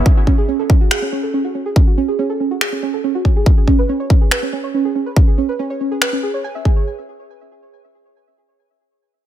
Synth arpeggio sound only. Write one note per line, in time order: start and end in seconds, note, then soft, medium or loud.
0.06 0.09 C#4 medium
0.17 0.22 F#4 medium
0.27 0.35 C#4 loud
0.38 0.43 G#4 medium
0.48 0.56 C#4 loud
0.59 0.64 A4 medium
0.70 0.75 C#4 medium
0.81 0.86 F#4 medium
0.91 0.99 G#4 medium
1.02 1.07 C#4 medium
1.12 1.20 C#4 loud
1.23 1.31 A4 medium
1.34 1.41 C#4 medium
1.44 1.49 F#4 medium
1.55 1.58 C#4 medium
1.66 1.71 G#4 medium
1.76 1.79 C#4 medium
1.87 1.92 F#4 medium
1.97 2.05 C#4 loud
2.08 2.13 G#4 medium
2.19 2.27 C#4 loud
2.30 2.35 A4 medium
2.40 2.45 C#4 medium
2.51 2.56 F#4 medium
2.61 2.69 G#4 medium
2.72 2.77 C#4 medium
2.83 2.90 C#4 medium
2.93 3.01 A4 medium
3.04 3.12 C#4 loud
3.15 3.20 F#4 medium
3.25 3.28 C#4 medium
3.36 3.41 G#4 medium
3.46 3.50 C#4 medium
3.57 3.62 G#4 medium
3.68 3.75 C#4 loud
3.79 3.84 B4 medium
3.89 3.97 C#4 loud
4.00 4.05 C#5 medium
4.10 4.15 C#4 medium
4.21 4.26 G#4 medium
4.32 4.39 B4 medium
4.42 4.47 C#4 medium
4.53 4.61 C#4 medium
4.64 4.71 C#5 medium
4.74 4.82 C#4 loud
4.85 4.90 G#4 medium
4.95 4.98 C#4 medium
5.06 5.11 B4 medium
5.17 5.20 C#4 medium
5.27 5.32 G#4 medium
5.38 5.46 C#4 loud
5.49 5.54 B4 medium
5.59 5.67 C#4 loud
5.70 5.75 C#5 medium
5.80 5.86 C#4 medium
5.91 5.96 G#4 medium
6.02 6.10 B4 medium
6.13 6.18 C#4 medium
6.23 6.28 G#4 medium
6.34 6.37 C#5 medium
6.44 6.47 G#5 loud
6.55 6.60 E5 medium
6.65 6.71 G#4 medium
6.76 6.81 C#5 medium